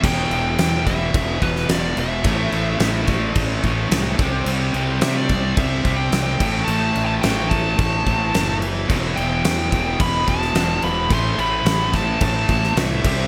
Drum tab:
CC |x-x-x-x-x-x-x-x-|x-x-x-x-x-x-x-x-|x-x-x-x-x-x-x-x-|x-x-x-x-x-x-x-x-|
SD |----o------oo---|----o-------o---|----o-------o---|----o-------o---|
BD |o-----o-o-o-----|o-----o-o-o---o-|------o-o-o---o-|------o-o-o-----|

CC |x-x-x-x-x-x-x-x-|x-x-x-x-x-x-x-x-|
SD |----o------oo---|----o-o----oo---|
BD |o-----o-o-o-----|o-----o-o-o---o-|